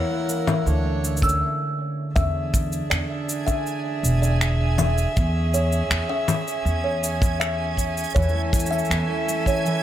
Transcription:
0.00 0.71 E3 medium
0.00 0.47 C#4 medium
0.00 0.65 E4 medium
0.00 0.65 A#4 medium
0.00 1.39 F#5 medium
0.10 0.29 A#3 medium
0.29 0.90 A#3 medium
0.29 shaker medium
0.47 1.22 C#4 medium
0.47 0.65 E5 medium
0.47 low conga medium
0.47 shaker soft
0.66 1.41 D2 medium
0.66 7.29 D3 medium
0.66 1.41 D4 medium
0.66 1.41 C#5 medium
0.66 shaker soft
0.84 1.03 A3 medium
1.03 4.36 A3 medium
1.03 shaker medium
1.17 shaker medium
1.22 4.12 C#4 medium
1.22 1.40 E6 medium
1.22 kick medium
1.22 shaker soft
1.29 shaker soft
2.15 2.80 E2 medium
2.15 5.13 D4 medium
2.15 8.11 G#4 medium
2.15 2.34 E5 loud
2.15 8.12 E5 medium
2.15 9.83 G#5 medium
2.15 kick loud
2.15 shaker soft
2.54 kick medium
2.54 shaker medium
2.72 shaker soft
2.90 3.03 E2 medium
2.90 3.08 D5 medium
2.90 finger snap loud
2.90 shaker soft
3.29 shaker medium
3.47 3.65 E5 medium
3.47 kick medium
3.47 shaker soft
3.67 shaker soft
4.03 5.05 E1 medium
4.03 shaker medium
4.22 4.40 D5 medium
4.22 shaker soft
4.41 finger snap loud
4.41 shaker soft
4.78 4.96 E5 medium
4.78 low conga medium
4.78 shaker medium
4.98 shaker soft
5.16 5.80 E2 medium
5.16 9.83 C#4 medium
5.16 kick loud
5.16 shaker soft
5.54 5.72 C#5 medium
5.54 shaker medium
5.72 shaker soft
5.90 6.02 E2 medium
5.90 finger snap loud
5.90 shaker soft
6.09 6.27 E5 loud
6.28 low conga medium
6.28 shaker medium
6.48 shaker soft
6.65 8.04 E2 medium
6.65 shaker soft
6.84 7.02 C#5 medium
7.04 shaker medium
7.22 kick loud
7.22 shaker soft
7.40 7.58 E5 loud
7.40 finger snap loud
7.40 shaker soft
7.77 kick medium
7.77 shaker medium
7.97 shaker soft
8.04 shaker soft
8.10 shaker soft
8.15 8.80 E2 medium
8.15 8.91 E3 medium
8.15 9.83 A4 medium
8.15 8.33 C#5 medium
8.15 9.83 E5 medium
8.15 kick loud
8.15 shaker soft
8.22 shaker soft
8.29 shaker soft
8.34 8.52 A3 medium
8.53 9.10 A3 medium
8.53 kick loud
8.53 shaker medium
8.60 shaker medium
8.66 shaker medium
8.71 9.48 C#4 medium
8.71 8.89 E5 loud
8.71 shaker soft
8.79 shaker soft
8.85 shaker soft
8.90 9.02 E2 medium
8.90 9.66 E3 medium
8.90 finger snap loud
8.90 shaker soft
9.10 9.29 A3 medium
9.29 9.83 A3 medium
9.29 shaker medium
9.46 9.83 C#4 medium
9.46 9.65 C#5 medium
9.46 kick medium
9.46 shaker soft
9.66 9.83 E3 medium
9.66 shaker soft

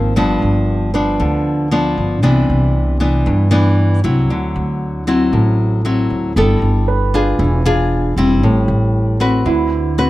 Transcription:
0.00 0.17 G#1 medium
0.00 0.14 D#3 medium
0.00 0.12 F3 soft
0.00 0.13 A#3 medium
0.00 0.13 C4 medium
0.00 0.18 C5 medium
0.16 0.41 G1 medium
0.16 1.17 G2 medium
0.16 0.90 F3 medium
0.16 0.90 B3 medium
0.16 0.90 D4 medium
0.42 1.16 G1 medium
0.94 1.67 F3 soft
0.94 1.67 B3 soft
0.94 1.67 D4 medium
0.94 2.32 B4 soft
1.20 1.93 D2 medium
1.20 2.20 D3 medium
1.71 2.21 F3 medium
1.71 2.21 B3 medium
1.71 2.21 D4 medium
1.98 2.23 G1 medium
2.23 2.47 C2 medium
2.23 3.24 C3 soft
2.23 2.96 E3 medium
2.23 2.96 B3 medium
2.23 2.97 D4 medium
2.50 3.23 C2 medium
3.00 3.48 E3 medium
3.00 3.48 B3 soft
3.00 3.48 D4 soft
3.26 4.27 G2 soft
3.26 4.00 G2 medium
3.51 3.99 E3 medium
3.51 3.99 B3 medium
3.51 3.99 D4 medium
4.04 4.29 C2 medium
4.04 5.03 F#3 soft
4.04 5.03 C4 soft
4.04 5.03 E4 medium
4.29 4.53 D2 medium
4.29 5.31 D3 medium
4.56 5.29 D2 medium
5.07 5.80 F#3 soft
5.07 5.81 C4 medium
5.07 5.81 E4 medium
5.32 6.06 A1 medium
5.32 6.34 A2 soft
5.85 6.32 F#3 soft
5.85 6.32 C4 soft
5.85 6.32 E4 medium
6.10 6.38 D2 medium
6.36 6.60 G1 medium
6.36 7.37 G3 soft
6.36 6.88 B3 medium
6.36 6.88 E4 medium
6.36 6.88 A4 medium
6.62 7.35 G1 medium
6.88 7.61 B4 soft
7.14 7.61 D4 medium
7.14 7.62 F4 medium
7.14 7.62 G#4 medium
7.39 8.13 E1 medium
7.39 8.40 E3 medium
7.66 8.13 D4 medium
7.66 8.13 F4 medium
7.66 8.13 G#4 medium
8.16 8.42 E1 medium
8.16 9.16 G3 medium
8.16 9.17 C4 medium
8.16 9.17 E4 medium
8.42 8.67 A1 medium
8.42 9.44 A2 medium
8.68 9.42 A1 medium
9.20 9.93 C4 medium
9.20 9.94 F#4 soft
9.20 9.94 B4 medium
9.45 10.10 D2 medium
9.45 10.10 D3 medium
9.45 10.10 E4 soft
9.98 10.10 C4 soft
9.98 10.10 F#4 soft
9.98 10.10 B4 medium

